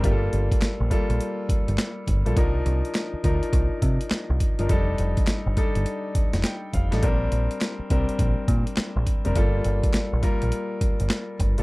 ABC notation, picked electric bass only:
X:1
M:4/4
L:1/16
Q:"Swing 16ths" 1/4=103
K:Gm
V:1 name="Picked electric bass" clef=bass
G,,,2 G,,, z2 B,,, z B,,, z3 G,,, z2 G,,, B,,, | C,,2 C,, z3 D,, z C,, z C, z2 C,, z G,,, | F,,,2 F,,, z2 G,,, z G,,, z3 F,,, z2 F,,, A,,, | B,,,2 B,,, z3 C,, z B,,, z B,, z2 B,,, z F,,, |
G,,,2 G,,, z2 B,,, z B,,, z3 G,,, z2 G,,, B,,, |]